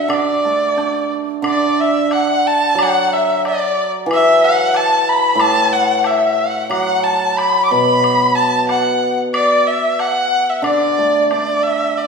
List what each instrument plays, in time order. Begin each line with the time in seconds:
Already playing: dizi E5, erhu E5
0.08 hammered dulcimer D3, dizi D5, high woodblock
0.14 erhu D5
0.45 hammered dulcimer A3
0.77 hammered dulcimer D4, low woodblock
1.42 hammered dulcimer D3, dizi D5, high woodblock
1.49 erhu D5
1.80 dizi E5, erhu E5
2.11 dizi F#5, erhu F#5, high woodblock, low woodblock
2.47 dizi A5, erhu A5
2.75 hammered dulcimer F#3
2.79 dizi F#5, erhu F#5, high woodblock
3.13 dizi E5, erhu E5
3.45 dizi D5, erhu D5, high woodblock, low woodblock
4.05 hammered dulcimer E3, dizi F#5
4.09 dizi E5, high woodblock
4.13 erhu E5
4.44 erhu F#5, dizi F#5
4.74 erhu A5, dizi A5, high woodblock, low woodblock
5.09 erhu B5, dizi B5
5.35 hammered dulcimer A2
5.40 erhu A5, dizi A5, high woodblock
5.73 erhu F#5, dizi F#5
6.04 erhu E5, dizi E5, high woodblock, low woodblock
6.38 erhu F#5
6.70 hammered dulcimer F#3, erhu F#5, dizi F#5, high woodblock
7.04 erhu A5, dizi A5
7.37 erhu B5, dizi B5, high woodblock, low woodblock
7.65 erhu D6
7.71 hammered dulcimer B2, erhu B5, dizi B5
8.04 high woodblock
8.36 erhu A5, dizi A5
8.69 erhu F#5, dizi F#5, high woodblock, low woodblock
9.34 erhu D5, dizi D5, high woodblock
9.67 erhu E5, dizi E5
9.99 erhu F#5, dizi F#5, high woodblock, low woodblock
10.08 dizi E5
10.13 dizi F#5
10.49 erhu E5
10.62 hammered dulcimer D3, dizi D5, erhu D5, high woodblock
10.98 hammered dulcimer A3
11.31 hammered dulcimer D4, erhu D5, high woodblock, low woodblock
11.63 erhu E5
11.97 erhu D5